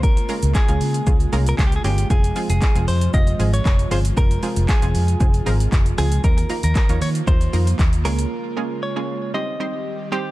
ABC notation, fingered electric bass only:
X:1
M:4/4
L:1/16
Q:1/4=116
K:Fm
V:1 name="Fingered electric bass" clef=bass
D,,2 z D,, z D,, D,2 D,,2 C,,2 D,,2 G,,,2 | F,,,2 z F,,, z F,,, F,,2 F,,,2 A,,,2 F,,,2 G,,,2 | F,,,2 z F,,, z F,,, F,,2 F,,,2 A,,,2 F,,,2 D,,2 | E,,2 z E,, z E,, E,2 E,,2 F,,2 E,,2 D,,2 |
z16 |]